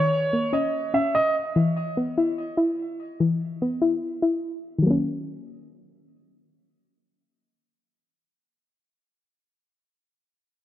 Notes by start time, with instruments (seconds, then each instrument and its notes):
Already playing: synth pluck D#3 C#4, grand piano C#5
0.33 synth pluck A#3
0.53 synth pluck C#4, grand piano D#5
0.94 synth pluck C#4, grand piano E5
1.15 grand piano D#5
1.56 synth pluck E3
1.97 synth pluck B3
2.18 synth pluck E4
2.57 synth pluck E4
3.20 synth pluck E3
3.62 synth pluck B3
3.82 synth pluck E4
4.22 synth pluck E4
4.78 synth pluck D#3 F#3
4.86 synth pluck A#3 C#4